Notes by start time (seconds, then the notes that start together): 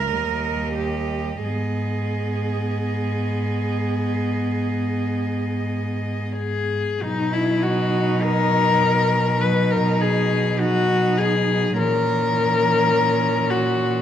Already playing: C#2 A#4 E5
0.11 D#2 G3 D#5
0.75 G4
1.43 G#2 B3 G#4 D#5
6.37 G#4
7.01 B2 F#3 D#4
7.33 E4
7.63 F#4
8.22 A#4
9.40 F#3 D#4 B4
9.71 A#4
10.01 G#4
10.59 F#3 D#4 F#4
11.18 G#4
11.77 A#2 E3 C#4 A#4
13.49 F#4